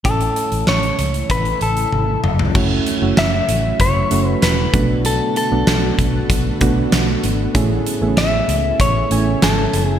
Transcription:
0.04 fingered electric bass A1, synth keys A2 A3 C#4 E4 A4, ambient pad C#3 E3 A3 E4, clean electric guitar A4, kick, closed hi-hat
0.20 closed hi-hat
0.36 closed hi-hat
0.52 fingered electric bass A1, closed hi-hat
0.67 fingered electric bass A1, clean electric guitar C#5, snare
0.83 closed hi-hat
0.99 fingered electric bass C#2, closed hi-hat
1.14 closed hi-hat
1.30 fingered electric bass A1, clean electric guitar B4, kick, closed hi-hat
1.45 closed hi-hat
1.61 fingered electric bass A1, clean electric guitar A4, closed hi-hat
1.77 closed hi-hat
1.92 fingered electric bass G#1, high tom
2.24 fingered electric bass F#1, mid tom
2.39 floor tom
2.54 fingered electric bass F#1, ambient pad C#3 F#3 A3 E4, synth keys A3 C#4 E4 F#4, kick, crash
2.86 closed hi-hat
3.02 fingered electric bass F#1, synth keys A3 C#4 E4 F#4
3.17 fingered electric bass F#1, clean electric guitar E5, snare, closed hi-hat
3.48 fingered electric bass A1, closed hi-hat
3.80 fingered electric bass F#1, clean electric guitar C#5, kick, closed hi-hat
4.11 fingered electric bass F#1, synth keys A3 C#4 E4 F#4, closed hi-hat
4.30 clean electric guitar B4
4.42 fingered electric bass E1, clean electric guitar B4, snare, closed hi-hat
4.73 fingered electric bass B1, synth keys B2 A3 B3 D4 F#4, ambient pad D3 B3 F#4, kick, closed hi-hat
5.05 clean electric guitar A4, closed hi-hat
5.36 clean electric guitar A4, closed hi-hat
5.51 fingered electric bass B1, synth keys A3 B3 D4 F#4
5.67 fingered electric bass B1, snare, closed hi-hat
5.99 fingered electric bass B1, kick, closed hi-hat
6.30 fingered electric bass B1, kick, closed hi-hat
6.61 fingered electric bass B1, synth keys A3 B3 D4 F#4, kick, closed hi-hat
6.92 fingered electric bass B1, snare, closed hi-hat
7.23 fingered electric bass G#1, closed hi-hat
7.54 fingered electric bass A1, synth keys A2 A3 C#4 E4 G#4, ambient pad C#3 E4, kick, closed hi-hat
7.86 closed hi-hat
8.01 fingered electric bass A1, synth keys A3 B3 E4 G#4
8.08 synth keys C#4
8.17 fingered electric bass A1, clean electric guitar E5, snare, closed hi-hat
8.48 fingered electric bass C#2, closed hi-hat
8.80 fingered electric bass A1, clean electric guitar C#5, kick, closed hi-hat
9.11 fingered electric bass A1, synth keys A3 C#4 E4 G#5, closed hi-hat
9.42 fingered electric bass G#1, clean electric guitar A4, snare, closed hi-hat
9.73 fingered electric bass F#1, closed hi-hat
9.84 clean electric guitar G#4

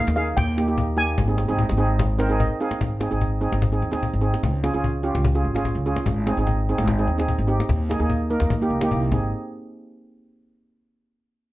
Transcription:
Already playing: steel pan F5
0.07 upright bass D#2, cajon slap
0.16 steel pan A#3 D#4 G#4 F5
0.28 cajon slap
0.37 upright bass D#2, steel pan G5, cajon bass
0.57 steel pan A#3 D#4 G4, cajon slap
0.67 steel pan A#3 D#4 G4, cajon slap
0.78 cajon bass
0.97 steel pan A#3 D#4 G4 G#5, cajon slap
1.09 cajon slap
1.18 upright bass G#1, cajon bass
1.28 steel pan C4 D#4 G#4
1.38 cajon slap
1.48 upright bass G#1, steel pan C4 D#4 G#4, cajon slap
1.59 cajon bass
1.69 upright bass G#1, cajon slap
1.77 steel pan C4 D#4 G#4
1.90 cajon slap
1.99 cajon bass
2.18 steel pan C4 D#4 A#4 C5, cajon slap
2.29 steel pan C4 D#4 G#4
2.40 steel pan D#5, cajon bass
2.60 steel pan C4 D#4 G#4 F5, cajon slap
2.71 cajon slap
2.81 upright bass G#1, cajon bass
3.00 steel pan C4 D#4 G#4, cajon slap
3.11 upright bass G#1, steel pan C4 D#4 G#4, cajon slap
3.21 cajon bass
3.41 steel pan C4 D#4 G#4, cajon slap
3.52 upright bass G#1, cajon slap
3.62 cajon bass
3.72 steel pan C4 D#4 G#4
3.82 upright bass D#2, cajon slap
3.91 steel pan C4 D#4 G#4, cajon slap
4.03 cajon bass
4.13 upright bass G#1
4.21 steel pan C4 D#4 G#4, cajon slap
4.34 cajon slap
4.43 upright bass C#2, cajon bass
4.64 steel pan C#4 F4 G#4, cajon slap
4.73 upright bass C#2, steel pan C#4 F4 G#4, cajon slap
4.84 cajon bass
5.03 steel pan C#4 F4 G4, cajon slap
5.15 upright bass C#2, cajon slap
5.25 cajon bass
5.35 steel pan C#4 F4 G#4
5.44 upright bass G#1, cajon slap
5.55 steel pan C#4 F4 G#4, cajon slap
5.65 cajon bass
5.75 upright bass C#2
5.86 steel pan C#4 F4 G#4, cajon slap
5.96 cajon slap
6.06 upright bass G#1, cajon bass
6.27 steel pan C4 D#4 G#4, cajon slap
6.37 upright bass G#1, steel pan C4 D#4 G#4, cajon slap
6.47 cajon bass
6.68 steel pan C4 D#4 G#4, cajon slap
6.78 upright bass G#1, cajon slap
6.88 cajon bass
6.99 steel pan C4 D#4 G#4
7.07 upright bass D#2, cajon slap
7.18 steel pan C4 D#4 G#4, cajon slap
7.28 cajon bass
7.38 upright bass G#1
7.47 steel pan C4 D#4 G4, cajon slap
7.60 cajon slap
7.69 upright bass D#2, cajon bass
7.89 steel pan A#3 D#4 G#4, cajon slap
7.99 upright bass D#2, steel pan A#3 D#4 G#4, cajon slap
8.10 cajon bass
8.30 steel pan A#3 D#4 A#4, cajon slap
8.40 upright bass D#2, cajon slap
8.50 upright bass D#2, cajon bass
8.61 steel pan A#3 D#4 G4
8.70 upright bass C#2, cajon slap
8.81 steel pan A#3 D#4 G4, cajon slap
8.91 upright bass C2, cajon bass
9.12 upright bass G#1, steel pan C4 D#4 G#4, cajon bass

